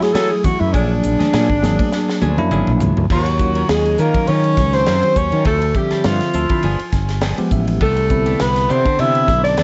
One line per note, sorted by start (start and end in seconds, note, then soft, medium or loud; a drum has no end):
0.00 0.12 F#3 loud
0.00 0.68 F#3 medium
0.00 0.68 A3 medium
0.00 0.68 E4 medium
0.00 0.15 G#4 loud
0.00 0.68 G#4 medium
0.00 muted clean electric guitar stroke soft
0.00 snare soft
0.00 ride medium
0.14 0.34 E3 medium
0.14 0.30 F#3 medium
0.14 0.34 A3 medium
0.14 0.34 C#4 medium
0.14 0.34 G#4 medium
0.14 0.33 A4 loud
0.14 snare medium
0.14 hi-hat pedal medium
0.14 ride medium
0.31 0.46 G#4 medium
0.44 0.62 F#4 medium
0.44 muted clean electric guitar stroke soft
0.44 muted fretless electric bass stroke soft
0.44 kick medium
0.44 hi-hat pedal medium
0.44 ride medium
0.44 low conga medium
0.60 0.73 F#2 loud
0.60 0.75 E4 medium
0.60 muted clean electric guitar stroke soft
0.73 1.00 A#1 loud
0.73 0.93 F#3 medium
0.73 1.55 F#3 medium
0.73 1.55 A#3 medium
0.73 0.93 C#4 medium
0.73 2.51 D4 loud
0.73 0.93 D4 medium
0.73 1.56 D4 medium
0.73 0.93 G#4 medium
0.73 1.56 G#4 medium
0.73 kick medium
0.73 hi-hat pedal medium
0.73 ride medium
1.03 1.19 A#1 medium
1.03 muted clean electric guitar stroke soft
1.03 hi-hat pedal medium
1.03 ride medium
1.19 1.32 C#4 soft
1.19 1.32 D4 soft
1.19 1.32 G#4 soft
1.19 snare soft
1.19 ride medium
1.19 high conga medium
1.19 low conga medium
1.33 1.48 A#2 loud
1.33 1.49 F#3 medium
1.33 1.49 C#4 medium
1.33 1.49 D4 medium
1.33 1.48 G#4 medium
1.33 snare loud
1.33 hi-hat pedal medium
1.33 ride medium
1.49 1.76 G#1 medium
1.49 muted clean electric guitar stroke soft
1.49 kick medium
1.62 2.30 F#3 medium
1.62 2.30 A#3 medium
1.62 2.30 D4 medium
1.62 2.30 G#4 medium
1.62 muted clean electric guitar stroke soft
1.62 snare soft
1.62 hi-hat pedal medium
1.62 ride medium
1.62 high conga medium
1.62 low conga medium
1.79 muted clean electric guitar stroke soft
1.79 kick medium
1.79 ride medium
1.79 high conga medium
1.92 snare medium
1.92 hi-hat pedal medium
2.09 muted clean electric guitar stroke medium
2.09 snare medium
2.22 2.37 D2 medium
2.22 2.38 F#3 medium
2.22 2.38 C#4 medium
2.22 2.38 D4 medium
2.22 2.37 G#4 medium
2.22 hi-hat pedal medium
2.22 high tom medium
2.22 high conga medium
2.38 2.50 F#2 medium
2.38 3.04 F#3 medium
2.38 3.04 A#3 medium
2.38 3.04 D4 medium
2.38 3.04 E4 loud
2.38 muted clean electric guitar stroke medium
2.38 high tom medium
2.51 2.66 G#1 medium
2.51 2.70 F#3 medium
2.51 2.71 C#4 loud
2.51 2.71 D4 medium
2.51 2.71 G#4 loud
2.51 hi-hat pedal medium
2.51 mid tom medium
2.67 2.80 A#1 medium
2.67 mid tom medium
2.80 2.96 C#2 medium
2.80 muted clean electric guitar stroke soft
2.80 floor tom loud
2.80 hi-hat pedal medium
2.80 low conga medium
2.97 3.09 D2 medium
2.97 muted clean electric guitar stroke soft
2.97 floor tom medium
3.10 3.62 D#2 medium
3.10 3.27 F#3 medium
3.10 3.67 F#3 medium
3.10 3.27 C#4 medium
3.10 3.27 F4 medium
3.10 3.66 F#4 medium
3.10 3.26 A#4 medium
3.10 kick medium
3.10 crash medium
3.26 muted clean electric guitar stroke soft
3.26 ride medium
3.39 4.07 D#3 medium
3.39 4.07 F#3 medium
3.39 4.08 C#4 medium
3.39 4.08 F4 medium
3.39 muted clean electric guitar stroke soft
3.39 kick medium
3.39 hi-hat pedal medium
3.55 3.69 C#4 soft
3.55 3.70 F4 soft
3.55 3.70 A#4 medium
3.55 ride medium
3.69 3.96 D#2 medium
3.69 4.04 G#3 medium
3.69 4.01 G#4 medium
3.69 muted clean electric guitar stroke soft
3.69 snare loud
3.69 ride medium
3.86 ride medium
3.98 4.13 D#3 medium
3.98 4.15 F#3 medium
3.98 4.16 C#4 medium
3.98 4.15 F4 medium
3.98 4.30 A#4 medium
3.98 4.14 A#4 medium
3.98 hi-hat pedal medium
4.02 4.32 A#3 medium
4.14 4.94 D#3 medium
4.14 4.94 F#3 medium
4.14 4.94 C#4 medium
4.14 4.28 C#4 soft
4.14 4.94 D#4 medium
4.14 4.28 F4 soft
4.14 4.28 A#4 soft
4.14 kick medium
4.14 ride medium
4.27 4.59 D#3 medium
4.27 4.45 F#3 medium
4.27 4.44 C#4 medium
4.27 4.78 C#4 medium
4.27 4.44 F4 medium
4.27 4.43 A#4 medium
4.27 4.76 C#5 loud
4.27 ride medium
4.44 muted clean electric guitar stroke soft
4.44 ride soft
4.57 4.84 C#2 medium
4.57 muted clean electric guitar stroke soft
4.57 kick medium
4.57 snare soft
4.57 hi-hat pedal medium
4.73 5.19 C4 medium
4.73 5.19 C5 loud
4.73 snare soft
4.73 ride medium
4.86 5.02 F#2 medium
4.86 5.04 F#3 medium
4.86 5.03 C#4 medium
4.86 5.03 F4 medium
4.86 5.02 A#4 medium
4.86 snare medium
4.86 ride medium
5.03 5.46 D#3 medium
5.03 5.46 F#3 medium
5.03 5.47 C#4 medium
5.03 5.47 F#4 medium
5.03 muted clean electric guitar stroke soft
5.03 ride medium
5.16 5.31 D#2 medium
5.16 5.46 C#4 medium
5.16 5.46 C#5 loud
5.16 muted clean electric guitar stroke soft
5.16 kick medium
5.16 hi-hat pedal medium
5.32 5.45 D#3 medium
5.32 muted clean electric guitar stroke soft
5.32 ride soft
5.45 5.72 D2 medium
5.45 5.62 F3 medium
5.45 5.80 A3 medium
5.45 5.62 C4 medium
5.45 5.61 E4 medium
5.45 5.78 A4 medium
5.45 5.61 A4 medium
5.45 kick medium
5.45 ride medium
5.62 muted clean electric guitar stroke soft
5.62 ride medium
5.75 6.43 D3 medium
5.75 6.43 F3 medium
5.75 6.07 G3 medium
5.75 6.43 C4 medium
5.75 6.07 G4 medium
5.75 6.43 E5 medium
5.75 muted clean electric guitar stroke soft
5.75 kick medium
5.75 hi-hat pedal medium
5.91 6.03 C4 soft
5.91 6.04 E4 soft
5.91 6.04 A4 soft
5.91 muted fretless electric bass stroke soft
5.91 snare soft
5.91 ride soft
6.04 6.20 G2 medium
6.04 6.94 F3 medium
6.04 6.94 F4 medium
6.04 snare loud
6.04 ride medium
6.21 muted fretless electric bass stroke soft
6.21 snare soft
6.21 ride medium
6.33 6.49 D2 medium
6.33 6.51 F3 medium
6.33 6.50 C4 medium
6.33 6.49 E4 medium
6.33 6.49 A4 medium
6.33 hi-hat pedal medium
6.49 6.63 D3 medium
6.49 6.64 F3 medium
6.49 6.64 C4 medium
6.49 6.63 C4 soft
6.49 6.64 E4 medium
6.49 6.63 E4 soft
6.49 6.64 A4 soft
6.49 kick medium
6.49 ride medium
6.63 6.78 G1 loud
6.63 6.80 F3 medium
6.63 6.79 B3 medium
6.63 6.79 D4 medium
6.63 6.79 G#4 medium
6.63 ride medium
6.79 muted clean electric guitar stroke soft
6.79 ride medium
6.92 7.33 G1 medium
6.92 7.20 G#5 medium
6.92 muted clean electric guitar stroke soft
6.92 kick medium
6.92 snare soft
6.92 hi-hat pedal medium
7.09 snare soft
7.09 ride medium
7.21 7.39 F3 medium
7.21 7.38 B3 medium
7.21 7.38 D4 medium
7.21 7.37 G#4 medium
7.21 7.50 G5 medium
7.21 snare loud
7.21 ride medium
7.38 7.81 F3 medium
7.38 7.81 G#3 medium
7.38 7.81 B3 medium
7.38 7.82 G4 medium
7.38 muted clean electric guitar stroke soft
7.38 muted fretless electric bass stroke soft
7.38 ride medium
7.51 7.78 A1 medium
7.51 7.80 E5 medium
7.51 muted clean electric guitar stroke soft
7.51 kick medium
7.51 hi-hat pedal medium
7.68 muted clean electric guitar stroke soft
7.68 ride medium
7.81 8.34 C2 medium
7.81 7.98 E3 medium
7.81 8.43 A3 medium
7.81 7.97 B3 medium
7.81 7.96 D4 medium
7.81 7.96 G4 medium
7.81 8.43 A4 loud
7.81 kick medium
7.81 ride medium
7.97 muted clean electric guitar stroke soft
7.97 ride medium
8.09 8.78 D3 medium
8.09 8.78 B3 medium
8.09 8.78 C4 medium
8.09 8.78 E4 medium
8.09 muted clean electric guitar stroke soft
8.09 kick medium
8.09 hi-hat pedal medium
8.26 8.39 B3 soft
8.26 8.39 D4 soft
8.26 8.39 G4 soft
8.26 ride medium
8.39 8.67 C2 medium
8.39 8.73 B3 medium
8.39 8.72 B4 medium
8.39 muted clean electric guitar stroke soft
8.39 snare loud
8.39 ride medium
8.56 snare soft
8.56 ride medium
8.69 8.85 C3 medium
8.69 8.86 E3 medium
8.69 8.86 B3 medium
8.69 9.02 C4 medium
8.69 8.85 D4 medium
8.69 8.85 G4 medium
8.69 9.02 C5 medium
8.69 hi-hat pedal medium
8.85 9.63 D3 medium
8.85 9.63 B3 medium
8.85 8.98 B3 soft
8.85 9.63 C4 medium
8.85 9.63 D4 medium
8.85 8.98 D4 soft
8.85 8.98 G4 soft
8.85 kick medium
8.85 ride medium
8.99 9.30 C3 medium
8.99 9.15 E3 medium
8.99 9.15 B3 medium
8.99 9.15 D4 medium
8.99 9.46 E4 medium
8.99 9.14 G4 medium
8.99 9.44 E5 medium
8.99 ride medium
9.15 muted clean electric guitar stroke soft
9.15 ride soft
9.28 9.55 B1 loud
9.28 muted clean electric guitar stroke soft
9.28 kick medium
9.28 snare soft
9.28 hi-hat pedal medium
9.44 9.63 D4 medium
9.44 9.63 D5 loud
9.44 snare soft
9.44 ride medium
9.57 9.63 E2 medium
9.57 9.63 E3 medium
9.57 9.63 B3 medium
9.57 9.63 D4 medium
9.57 9.63 G4 medium
9.57 snare medium
9.57 ride medium